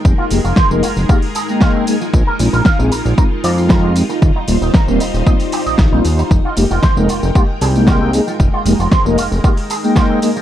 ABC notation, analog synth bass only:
X:1
M:4/4
L:1/16
Q:1/4=115
K:Fm
V:1 name="Analog synth bass" clef=bass
F,,, z F,,, F,,, z F,,, F,,, F,,, z8 | B,,, z B,,, B,,, z B,,, B,,, B,,, z2 F,,4- F,, z | E,,, z E,,, E,,, z E,,, E,,, E,,, z3 B,,, B,,, B,,, E,, z | F,,, z F,,, F,,, z F,,, F,,, F,,, z2 C,,4- C,, z |
F,,, z F,,, F,,, z F,,, F,,, F,,, z8 |]